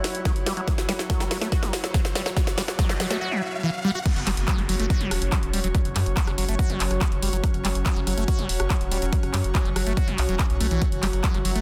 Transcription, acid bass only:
0.25 0.32 F#3 medium
0.46 0.53 G3 medium
0.57 0.61 F#3 medium
0.68 0.72 F#3 medium
0.89 0.93 G3 loud
1.10 1.22 F#3 medium
1.20 1.24 G3 medium
1.31 1.38 F#3 medium
1.42 1.48 A3 medium
1.52 1.64 F#4 medium
1.63 1.73 F#3 medium
1.94 2.01 F#3 medium
2.15 2.22 G3 medium
2.26 2.30 F#3 medium
2.37 2.41 F#3 medium
2.58 2.62 G3 loud
2.79 2.91 F#3 medium
2.89 2.93 G3 medium
3.00 3.07 F#3 medium
3.10 3.17 A3 medium
3.21 3.33 F#4 medium
3.32 3.42 F#3 medium
3.63 3.70 E3 medium
3.84 3.91 G3 loud
3.95 3.99 F#4 medium
4.06 4.10 F#3 medium
4.27 4.31 G3 loud
4.48 4.60 F#3 medium
4.58 4.62 G3 medium
4.69 4.76 F#3 medium
4.80 4.86 A3 medium
4.90 5.02 F#4 medium
5.01 5.11 F#3 medium
5.32 5.39 F#3 medium
5.53 5.60 G3 medium
5.64 5.68 F#3 medium
5.75 5.79 F#3 medium
5.96 6.00 G3 loud
6.17 6.29 F#3 medium
6.27 6.31 G3 medium
6.38 6.45 F#3 medium
6.49 6.55 A3 medium
6.59 6.71 F#4 medium
6.70 6.80 F#3 medium
7.01 7.08 F#3 medium
7.22 7.29 G3 medium
7.33 7.37 F#3 medium
7.44 7.48 F#3 medium
7.65 7.69 G3 loud
7.86 7.98 F#3 medium
7.96 8.00 G3 medium
8.07 8.14 F#3 medium
8.18 8.24 A3 medium
8.28 8.40 F#4 medium
8.39 8.49 F#3 medium
8.70 8.77 F#3 medium
8.92 8.98 G3 medium
9.02 9.06 F#3 medium
9.13 9.17 F#3 medium
9.34 9.38 G3 loud
9.55 9.67 F#3 medium
9.65 9.69 G3 medium
9.76 9.83 F#3 medium
9.87 9.93 A3 medium
9.97 10.09 F#4 medium
10.08 10.18 F#3 medium
10.29 10.36 F#3 medium
10.39 10.46 F#4 medium
10.60 10.67 A3 medium
10.71 10.81 E3 medium
10.82 10.86 F#3 medium
11.03 11.07 G3 loud
11.24 11.36 F#3 medium
11.34 11.38 G3 medium
11.45 11.52 F#3 medium
11.56 11.61 A3 medium

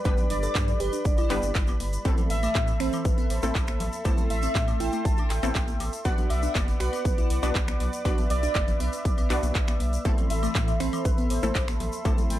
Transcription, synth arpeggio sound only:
0.05 0.14 B4 loud
0.18 0.27 D4 medium
0.30 0.39 D4 medium
0.43 0.52 A4 medium
0.55 0.64 D4 medium
0.68 0.77 D4 medium
0.80 0.89 G4 loud
0.93 1.02 D4 medium
1.05 1.14 D4 medium
1.18 1.96 E4 medium
2.05 2.14 C4 loud
2.18 2.27 E3 medium
2.30 2.39 E3 medium
2.43 2.52 A3 loud
2.68 2.77 E3 medium
2.80 2.89 C4 loud
2.93 3.02 E3 medium
3.18 3.95 B3 medium
4.05 4.14 E4 loud
4.18 4.27 A3 medium
4.30 4.39 A3 medium
4.43 4.52 C4 medium
4.55 4.64 A3 medium
4.68 4.77 A3 medium
4.80 4.89 E4 loud
4.93 5.02 A3 medium
5.05 5.14 A3 medium
5.18 5.95 D4 loud
6.05 6.14 F#4 loud
6.18 6.27 B3 medium
6.30 6.39 B3 medium
6.43 6.52 D4 loud
6.55 6.64 B3 medium
6.68 6.77 B3 medium
6.80 6.89 F#4 loud
6.93 7.02 B3 medium
7.18 7.95 E4 medium
8.05 8.14 F#4 loud
8.18 8.27 B3 medium
8.30 8.39 B3 medium
8.43 8.52 D4 loud
8.55 8.64 B3 medium
8.68 8.77 B3 medium
8.80 8.89 B3 loud
8.93 9.02 B3 medium
9.05 9.14 B3 medium
9.18 9.96 B3 medium
10.05 10.14 C4 loud
10.18 10.27 E3 medium
10.30 10.39 E3 medium
10.43 10.52 A3 medium
10.55 10.64 E3 medium
10.68 10.77 E3 medium
10.80 10.89 C4 loud
10.93 11.02 E3 medium
11.05 11.14 E3 medium
11.18 11.95 B3 loud
12.05 12.14 E4 loud
12.18 12.27 A3 medium
12.30 12.39 A3 medium

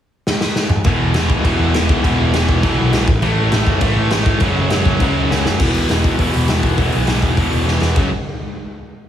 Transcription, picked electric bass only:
0.85 0.99 E1 loud
1.00 1.14 E1 medium
1.16 1.29 E1 medium
1.30 1.44 D2 medium
1.45 1.59 E1 loud
1.59 1.74 E2 medium
1.74 1.89 E1 medium
1.89 2.04 D2 medium
2.05 2.19 E1 loud
2.19 2.33 E1 medium
2.34 2.48 E1 medium
2.49 2.63 E1 loud
2.64 2.78 B1 medium
2.79 2.93 B1 medium
2.94 3.07 B1 medium
3.08 3.22 A1 medium
3.23 3.37 A1 loud
3.37 3.51 A1 medium
3.52 3.66 A1 loud
3.67 3.81 F#1 loud
3.82 3.96 A1 loud
3.96 4.11 A2 medium
4.11 4.25 A1 medium
4.26 4.40 G#1 medium
4.41 4.55 F#1 medium
4.56 4.70 F#1 medium
4.71 4.85 F#1 medium
4.85 5.00 F#1 loud
5.00 5.15 C#2 loud
5.16 5.30 C#2 medium
5.30 5.44 C#2 medium
5.45 5.59 F#1 medium
5.60 5.71 E1 medium
5.75 5.85 D2 medium
5.90 6.00 E1 loud
6.04 6.15 D2 medium
6.19 6.29 E1 medium
6.34 6.44 E1 medium
6.49 6.59 E1 medium
6.64 6.74 E1 medium
6.78 6.88 E1 loud
6.93 7.03 B1 medium
7.08 7.18 B1 medium
7.23 7.33 E1 loud
7.37 7.48 E1 medium
7.52 7.62 E1 medium
7.67 7.77 E1 medium
7.81 7.92 E2 medium
7.96 8.10 F#1 medium

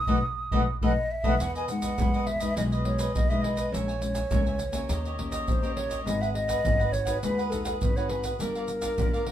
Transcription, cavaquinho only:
0.07 0.18 A4 medium
0.07 0.18 B4 loud
0.07 0.18 D#5 loud
0.52 0.62 A4 medium
0.52 0.62 B4 loud
0.52 0.62 D#5 loud
0.82 0.92 A4 medium
0.82 0.92 B4 medium
0.82 0.92 D#5 medium
1.24 1.34 A4 medium
1.24 1.34 B4 medium
1.24 1.34 D#5 medium
1.40 1.54 E4 soft
1.40 1.54 G#4 soft
1.40 1.54 B4 soft
1.40 1.54 D#5 soft
1.55 1.68 G#4 medium
1.55 1.69 B4 medium
1.55 1.68 D#5 medium
1.69 muted cavaquinho stroke soft
1.82 1.97 G#4 medium
1.82 1.97 B4 medium
1.82 1.96 D#5 medium
1.99 2.12 E4 soft
1.99 2.13 G#4 medium
1.99 2.13 B4 soft
1.99 2.13 D#5 medium
2.14 2.27 G#4 medium
2.14 2.27 B4 medium
2.14 2.27 D#5 medium
2.28 muted cavaquinho stroke soft
2.40 2.55 G#4 soft
2.40 2.55 B4 medium
2.40 2.54 D#5 medium
2.56 2.70 E4 soft
2.56 2.70 G#4 soft
2.56 2.71 B4 medium
2.56 2.71 D#5 medium
2.72 3.00 G#4 medium
2.72 2.98 B4 medium
2.72 2.97 D#5 medium
2.98 3.28 G#4 soft
2.98 3.28 B4 medium
2.98 3.27 D#5 medium
3.30 3.43 G#4 medium
3.30 3.43 B4 medium
3.30 3.43 D#5 medium
3.43 3.57 E4 soft
3.43 3.57 G#4 soft
3.43 3.56 B4 soft
3.43 3.54 D#5 medium
3.55 3.72 G#4 medium
3.55 3.71 B4 medium
3.55 3.70 D#5 medium
3.72 3.86 A#4 medium
3.72 3.87 C#5 soft
3.72 3.87 E5 soft
3.72 3.87 G#5 medium
3.88 4.01 C#5 medium
3.88 4.01 E5 medium
3.88 4.01 G#5 medium
4.01 muted cavaquinho stroke soft
4.14 4.30 C#5 soft
4.14 4.30 E5 medium
4.14 4.29 G#5 medium
4.31 4.45 A#4 soft
4.31 4.45 C#5 medium
4.31 4.45 E5 medium
4.31 4.45 G#5 medium
4.46 4.59 C#5 medium
4.46 4.59 E5 medium
4.46 4.59 G#5 medium
4.60 muted cavaquinho stroke soft
4.73 4.89 C#5 medium
4.73 4.88 E5 medium
4.73 4.87 G#5 medium
4.90 5.03 D#4 soft
4.90 5.04 G4 soft
4.90 5.04 C#5 soft
4.90 5.04 D#5 medium
5.05 5.33 G4 medium
5.05 5.32 C#5 medium
5.05 5.30 D#5 medium
5.32 5.61 G4 medium
5.32 5.61 C#5 medium
5.32 5.60 D#5 medium
5.63 5.76 G4 medium
5.63 5.77 C#5 medium
5.63 5.76 D#5 medium
5.77 5.90 D#4 soft
5.77 5.91 G4 medium
5.77 5.90 C#5 medium
5.77 5.88 D#5 medium
5.90 6.05 G4 medium
5.90 6.05 C#5 medium
5.90 6.04 D#5 medium
6.06 6.20 D#4 soft
6.06 6.20 G#4 soft
6.06 6.20 B4 soft
6.06 6.20 F#5 medium
6.21 6.34 G#4 medium
6.21 6.34 B4 medium
6.21 6.34 F#5 medium
6.35 muted cavaquinho stroke soft
6.48 6.64 G#4 medium
6.48 6.63 B4 medium
6.48 6.62 F#5 medium
6.65 6.78 D#4 medium
6.65 6.78 G#4 soft
6.65 6.79 B4 soft
6.65 6.78 F#5 soft
6.79 6.92 G#4 soft
6.79 6.92 B4 medium
6.79 6.93 F#5 medium
6.92 muted cavaquinho stroke soft
7.05 7.21 G#4 medium
7.05 7.21 B4 medium
7.05 7.20 F#5 medium
7.23 7.36 D#4 soft
7.23 7.36 G#4 medium
7.23 7.37 B4 medium
7.23 7.37 F#5 medium
7.38 7.66 G#4 medium
7.38 7.65 B4 medium
7.38 7.63 F#5 medium
7.65 7.95 G#4 medium
7.65 7.94 B4 medium
7.65 7.94 F#5 medium
7.97 8.10 G#4 medium
7.97 8.10 B4 medium
7.97 8.10 F#5 medium
8.10 8.23 D#4 soft
8.10 8.24 G#4 soft
8.10 8.24 B4 medium
8.10 8.22 F#5 medium
8.24 8.39 G#4 medium
8.24 8.38 B4 medium
8.24 8.38 F#5 medium
8.40 8.53 G4 soft
8.40 8.54 A#4 soft
8.40 8.54 D5 soft
8.40 8.54 F5 medium
8.56 8.68 A#4 medium
8.56 8.69 D5 medium
8.56 8.68 F5 medium
8.69 muted cavaquinho stroke soft
8.81 8.97 A#4 soft
8.81 8.96 D5 medium
8.81 8.96 F5 medium
8.98 9.11 G4 medium
8.98 9.12 A#4 medium
8.98 9.12 D5 soft
8.98 9.12 F5 medium
9.13 9.26 A#4 medium
9.13 9.26 D5 medium
9.13 9.26 F5 medium
9.27 muted cavaquinho stroke soft

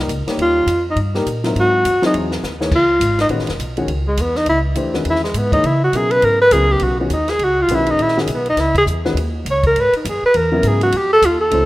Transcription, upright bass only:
0.08 0.25 C#2 medium
0.27 muted upright bass stroke soft
0.38 0.66 D#2 medium
0.66 0.95 F2 loud
0.96 1.25 G2 medium
1.26 1.54 A#2 medium
1.55 1.84 G#2 medium
1.85 2.01 F#2 loud
2.03 muted upright bass stroke soft
2.14 2.43 E2 medium
2.43 2.71 D#2 medium
2.71 2.99 C#2 medium
3.00 3.29 G#1 medium
3.30 3.39 A#1 medium
3.39 3.49 G#1 medium
3.49 3.58 E1 medium
3.59 3.86 B1 medium
3.87 4.16 C#2 medium
4.17 4.45 E2 medium
4.46 4.75 C#2 medium
4.75 5.04 D#2 medium
5.05 5.33 E2 medium
5.34 5.63 G#2 medium
5.64 5.92 C#3 medium
5.92 6.22 B2 medium
6.22 6.50 G#2 medium
6.51 6.80 C#2 loud
6.80 7.09 B1 medium
7.10 7.38 D#2 medium
7.38 7.68 C#2 medium
7.68 7.97 B1 medium
7.98 8.26 A#1 medium
8.26 8.56 B1 medium
8.56 8.85 C#2 medium
8.86 9.13 E2 loud
9.14 9.44 D#2 loud
9.45 9.74 C#2 medium
9.75 9.91 G#2 medium
9.93 muted upright bass stroke soft
10.05 10.21 F#2 loud
10.23 muted upright bass stroke soft
10.35 10.62 E2 loud
10.63 10.92 G#2 medium
10.93 11.21 F2 medium
11.22 11.50 D#2 loud
11.52 11.65 C#2 medium

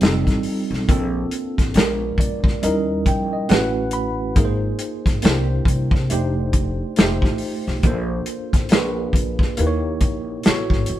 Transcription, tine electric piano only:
0.01 0.88 G3 medium
0.01 0.88 C4 medium
0.01 0.89 D#4 medium
0.01 0.89 F4 medium
0.01 0.90 A4 medium
0.88 1.75 A#3 medium
0.88 1.76 C4 medium
0.88 1.75 D4 medium
0.88 1.76 F4 medium
0.88 1.77 A4 medium
1.75 2.62 G#3 medium
1.75 2.62 B3 medium
1.75 2.63 D4 medium
1.75 2.63 F4 medium
1.75 2.63 A#4 medium
2.20 2.60 D5 medium
2.62 3.49 G3 medium
2.62 3.48 C#4 medium
2.62 3.50 D#4 medium
2.62 3.48 E4 medium
2.62 3.50 A#4 medium
2.62 3.03 D#5 medium
3.07 3.31 G5 medium
3.33 3.49 D#5 medium
3.49 4.36 A3 medium
3.49 4.36 C#4 medium
3.49 4.36 E4 medium
3.49 4.37 F#4 medium
3.49 4.37 B4 loud
3.49 3.90 F#5 medium
3.93 4.33 B5 medium
4.36 5.22 A#3 medium
4.36 5.23 D#4 medium
4.36 5.24 F4 medium
4.36 5.24 G#4 medium
4.36 4.45 A#4 medium
4.45 5.24 C5 medium
5.23 6.10 A#3 medium
5.23 6.09 D4 medium
5.23 5.32 D#4 medium
5.23 6.11 G4 medium
5.23 6.11 C5 medium
5.31 6.14 E4 medium
6.10 6.96 A3 medium
6.10 6.97 D4 medium
6.10 6.97 D#4 medium
6.10 6.98 G4 medium
6.10 6.98 C5 medium
6.97 7.84 A3 medium
6.97 7.84 D#4 medium
6.97 7.84 F4 medium
6.97 7.85 G4 medium
6.97 7.86 C5 medium
7.84 8.70 A#3 medium
7.84 8.70 D4 medium
7.84 8.71 F4 medium
7.84 8.72 A4 medium
7.84 8.72 C5 medium
8.71 9.56 A#3 medium
8.71 9.58 D4 medium
8.71 9.59 F4 medium
8.71 9.59 G#4 medium
8.71 9.59 B4 medium
9.57 10.45 A#3 medium
9.57 10.45 D#4 medium
9.57 10.45 E4 medium
9.57 10.46 G4 medium
9.57 9.67 B4 medium
9.67 10.47 C#5 medium
10.46 11.00 B3 medium
10.46 11.00 E4 medium
10.46 11.00 F#4 medium
10.46 11.00 A4 medium
10.46 11.00 C#5 medium

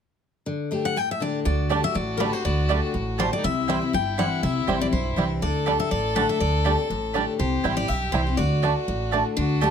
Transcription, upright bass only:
1.46 1.79 D2 medium
1.95 2.29 A1 medium
2.45 2.79 D2 medium
2.94 3.28 A1 medium
3.44 3.78 C2 medium
3.93 4.27 G1 medium
4.43 4.60 C2 medium
4.68 4.89 A1 medium
4.92 5.13 B1 medium
5.17 5.38 C2 medium
5.42 5.76 D2 medium
5.91 6.25 A1 medium
6.40 6.74 D2 medium
6.90 7.24 A1 medium
7.39 7.56 C2 medium
7.64 7.85 A1 medium
7.89 8.10 B1 medium
8.13 8.34 C2 medium
8.38 8.72 D2 medium
8.88 9.21 A1 medium
9.37 9.71 D2 medium

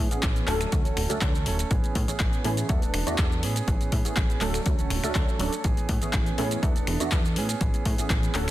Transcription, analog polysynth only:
0.11 0.45 E3 medium
0.11 0.45 A3 medium
0.11 0.45 B3 medium
0.11 0.45 C#4 medium
0.11 0.45 G#4 medium
0.47 0.69 F#3 medium
0.47 0.69 A3 medium
0.47 0.69 C#4 medium
0.47 0.70 D4 medium
0.47 0.70 A4 loud
0.72 1.07 D3 medium
0.72 1.07 F#3 medium
0.72 1.07 A3 medium
0.72 1.07 C#4 medium
0.72 1.07 F#4 medium
1.09 1.18 F#3 medium
1.09 1.19 A3 medium
1.09 1.19 C#4 medium
1.09 1.19 D4 medium
1.09 1.19 A4 loud
1.21 1.34 F#3 medium
1.21 1.34 A3 medium
1.21 1.34 C#4 medium
1.21 1.34 D4 medium
2.08 2.41 E3 medium
2.08 2.42 A3 medium
2.08 2.42 B3 medium
2.08 2.42 C#4 medium
2.08 2.42 G#4 medium
2.44 2.66 E3 loud
2.44 2.66 A3 medium
2.44 2.66 B3 medium
2.44 2.67 C#4 medium
2.44 2.67 G#4 loud
2.69 3.03 E3 medium
2.69 3.03 A3 medium
2.69 3.04 B3 medium
2.69 3.04 D4 medium
2.69 3.04 E4 medium
3.06 3.15 E3 medium
3.06 3.16 A3 medium
3.06 3.16 B3 medium
3.06 3.16 D4 medium
3.06 3.16 F#4 loud
3.18 3.31 E3 medium
3.18 3.31 A3 medium
3.18 3.31 B3 medium
4.05 4.38 E3 medium
4.05 4.39 A3 medium
4.05 4.39 B3 medium
4.05 4.39 C#4 medium
4.05 4.39 G#4 medium
4.41 4.63 F#3 medium
4.41 4.63 A3 medium
4.41 4.63 C#4 medium
4.41 4.63 D4 medium
4.41 4.63 A4 loud
4.66 5.01 D3 medium
4.66 5.00 F#3 medium
4.66 5.00 A3 medium
4.66 5.01 C#4 medium
4.66 5.01 F#4 medium
5.04 5.12 F#3 medium
5.04 5.13 A3 medium
5.04 5.13 C#4 medium
5.04 5.13 D4 medium
5.04 5.13 A4 loud
5.16 5.28 F#3 medium
5.16 5.28 A3 medium
5.16 5.28 C#4 medium
5.16 5.28 D4 medium
5.40 5.53 F#3 medium
5.40 5.53 A3 medium
5.40 5.53 C#4 medium
5.40 5.53 D4 medium
5.40 5.53 A4 loud
6.02 6.35 E3 medium
6.02 6.35 A3 medium
6.02 6.35 B3 medium
6.02 6.36 C#4 medium
6.02 6.36 G#4 medium
6.38 6.60 E3 medium
6.38 6.60 A3 medium
6.38 6.60 B3 medium
6.38 6.60 C#4 medium
6.38 6.60 G#4 loud
6.62 6.97 E3 medium
6.62 6.97 A3 medium
6.62 6.97 B3 medium
6.62 6.97 D4 medium
6.62 6.97 E4 medium
7.00 7.09 E3 medium
7.00 7.09 A3 medium
7.00 7.09 B3 medium
7.00 7.09 D4 medium
7.00 7.09 F#4 loud
7.99 8.32 E3 medium
7.99 8.32 A3 medium
7.99 8.32 B3 medium
7.99 8.32 C#4 medium
7.99 8.32 G#4 medium
8.35 8.51 F#3 loud
8.35 8.51 A3 medium
8.35 8.51 C#4 medium
8.35 8.51 D4 medium
8.35 8.51 A4 loud

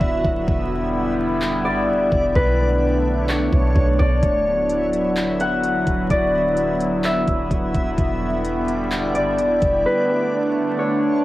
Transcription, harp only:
0.00 0.45 D5 loud
0.00 1.27 E5 medium
1.65 3.35 D5 medium
2.36 4.41 B4 loud
3.29 4.05 C#5 medium
3.99 5.84 D5 medium
5.41 7.01 F#5 medium
6.10 7.95 D5 loud
7.05 8.77 E5 medium
9.15 10.85 D5 medium
9.86 11.24 B4 loud
10.79 11.24 C#5 medium

